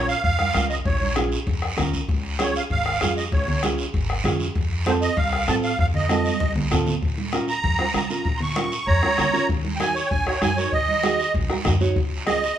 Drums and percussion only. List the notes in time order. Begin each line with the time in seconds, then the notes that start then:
0.08 short guiro
0.24 bombo low, high conga, long guiro
0.39 bombo rim, high conga
0.54 bombo rim, high conga, short guiro
0.70 short guiro
0.85 bombo low, high conga, long guiro
1.01 high conga
1.16 bombo rim, high conga, short guiro
1.32 short guiro
1.47 bombo low, high conga, long guiro
1.62 bombo rim
1.78 bombo low, bombo rim, high conga, low conga, short guiro
1.93 short guiro
2.09 bombo low, high conga, long guiro
2.39 bombo rim, high conga, short guiro
2.56 short guiro
2.70 bombo low, high conga, long guiro
2.86 bombo rim
3.01 bombo rim, high conga, short guiro
3.17 short guiro
3.32 bombo low, high conga, long guiro
3.48 low conga
3.63 bombo rim, high conga, short guiro
3.78 short guiro
3.94 bombo low, high conga, long guiro
4.10 bombo rim
4.25 bombo rim, high conga, low conga, short guiro
4.40 short guiro
4.55 bombo low, high conga, long guiro
4.86 bombo rim, high conga, short guiro
5.02 short guiro
5.17 bombo low, high conga, long guiro
5.33 bombo rim
5.48 bombo rim, high conga, short guiro
5.63 short guiro
5.79 bombo low, high conga, long guiro
5.94 low conga
6.09 bombo rim, high conga, short guiro
6.25 high conga, short guiro
6.40 bombo low, high conga, long guiro
6.56 low conga
6.71 bombo low, bombo rim, low conga, short guiro
6.86 low conga, short guiro
7.02 bombo low, high conga, long guiro
7.18 high conga
7.33 bombo rim, high conga, short guiro
7.48 short guiro
7.64 bombo low, high conga, long guiro
7.79 bombo rim, high conga
7.94 bombo rim, high conga, short guiro
8.10 short guiro
8.25 bombo low, high conga, long guiro
8.40 low conga
8.56 bombo rim, high conga, short guiro
8.72 short guiro
8.87 bombo low, high conga, long guiro
9.03 bombo rim, high conga
9.18 bombo rim, high conga, low conga, short guiro
9.34 short guiro
9.49 bombo low, high conga, long guiro
9.65 high conga
9.80 bombo rim, high conga, short guiro
9.96 short guiro
10.11 bombo low, high conga, long guiro
10.27 bombo rim
10.42 bombo rim, high conga, short guiro
10.58 short guiro
10.73 bombo low, high conga, long guiro
10.88 high conga
11.03 bombo rim, high conga, short guiro
11.19 short guiro
11.34 bombo low, high conga, long guiro
11.50 bombo rim, high conga
11.65 bombo low, bombo rim, high conga, low conga, short guiro
11.81 short guiro
11.96 bombo low, long guiro
12.27 bombo rim, high conga, short guiro
12.43 short guiro